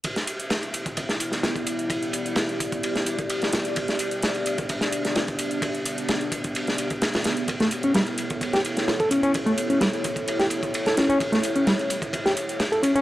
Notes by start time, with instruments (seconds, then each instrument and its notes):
0.04 analog synth pad B3 E4 G4 D5, kick, closed hi-hat, ride
0.16 snare, closed hi-hat
0.27 closed hi-hat, ride
0.40 closed hi-hat
0.50 snare, closed hi-hat, ride
0.62 closed hi-hat, ride
0.74 closed hi-hat, ride
0.86 kick, closed hi-hat
0.97 kick, closed hi-hat, ride
1.09 snare, closed hi-hat
1.20 closed hi-hat, ride
1.32 snare, closed hi-hat
1.43 snare, closed hi-hat, ride
1.56 kick, closed hi-hat
1.67 closed hi-hat, ride
1.79 closed hi-hat
1.90 kick, closed hi-hat, ride
2.03 closed hi-hat
2.13 closed hi-hat, ride
2.26 closed hi-hat
2.36 snare, closed hi-hat, ride
2.49 closed hi-hat
2.60 kick, closed hi-hat, ride
2.72 kick, closed hi-hat
2.83 closed hi-hat, ride
2.96 snare, closed hi-hat
3.06 closed hi-hat, ride
3.19 kick, closed hi-hat
3.30 closed hi-hat, ride
3.42 snare, closed hi-hat
3.53 snare, closed hi-hat, ride
3.65 closed hi-hat
3.76 analog synth pad B3 D4, kick, closed hi-hat, ride
3.88 snare, closed hi-hat
3.99 closed hi-hat, ride
4.11 closed hi-hat
4.22 snare, closed hi-hat, ride
4.35 closed hi-hat, ride
4.46 closed hi-hat, ride
4.58 kick, closed hi-hat
4.69 kick, closed hi-hat, ride
4.81 snare, closed hi-hat
4.92 closed hi-hat, ride
5.05 snare, closed hi-hat
5.16 snare, closed hi-hat, ride
5.28 kick, closed hi-hat
5.39 closed hi-hat, ride
5.51 closed hi-hat
5.62 kick, closed hi-hat, ride
5.75 closed hi-hat
5.86 closed hi-hat, ride
5.98 closed hi-hat
6.09 snare, closed hi-hat, ride
6.21 closed hi-hat
6.32 kick, closed hi-hat, ride
6.44 kick, closed hi-hat
6.55 closed hi-hat, ride
6.67 snare, closed hi-hat
6.78 closed hi-hat, ride
6.90 kick, closed hi-hat
7.02 snare, closed hi-hat, ride
7.14 snare, closed hi-hat, ride
7.24 snare, closed hi-hat, ride
7.37 closed hi-hat
7.48 analog synth pad E4 A4 C#5, kick, closed hi-hat, ride
7.60 reed electric piano A3, snare, closed hi-hat
7.71 closed hi-hat, ride
7.83 reed electric piano C#4, closed hi-hat
7.94 reed electric piano G3, snare, closed hi-hat, ride
8.06 closed hi-hat, ride
8.18 closed hi-hat, ride
8.30 kick, closed hi-hat
8.41 kick, closed hi-hat, ride
8.53 reed electric piano G4, snare, closed hi-hat
8.65 closed hi-hat, ride
8.77 snare, closed hi-hat
8.88 snare, closed hi-hat, ride
9.00 reed electric piano A4, kick, closed hi-hat
9.11 reed electric piano C#4, closed hi-hat, ride
9.23 reed electric piano C#4, closed hi-hat
9.34 kick, closed hi-hat, ride
9.46 reed electric piano A3, closed hi-hat
9.58 closed hi-hat, ride
9.70 reed electric piano C#4, closed hi-hat
9.81 reed electric piano G3, snare, closed hi-hat, ride
9.93 closed hi-hat
10.04 kick, closed hi-hat, ride
10.16 kick, closed hi-hat
10.28 closed hi-hat, ride
10.40 reed electric piano G4, snare, closed hi-hat
10.50 closed hi-hat, ride
10.63 kick, closed hi-hat
10.74 closed hi-hat, ride
10.86 reed electric piano A4, snare, closed hi-hat
10.97 reed electric piano C#4, snare, closed hi-hat, ride
11.10 reed electric piano C#4, closed hi-hat
11.20 kick, closed hi-hat, ride
11.33 reed electric piano A3, snare, closed hi-hat
11.43 closed hi-hat, ride
11.56 reed electric piano C#4, closed hi-hat
11.67 reed electric piano G3, snare, closed hi-hat, ride
11.79 closed hi-hat, ride
11.90 closed hi-hat, ride
12.02 kick, closed hi-hat
12.13 kick, closed hi-hat, ride
12.26 reed electric piano G4, snare, closed hi-hat
12.37 closed hi-hat, ride
12.49 closed hi-hat
12.60 snare, closed hi-hat, ride
12.72 reed electric piano A4, closed hi-hat, ride
12.83 reed electric piano C#4, closed hi-hat, ride
12.95 reed electric piano C#4, closed hi-hat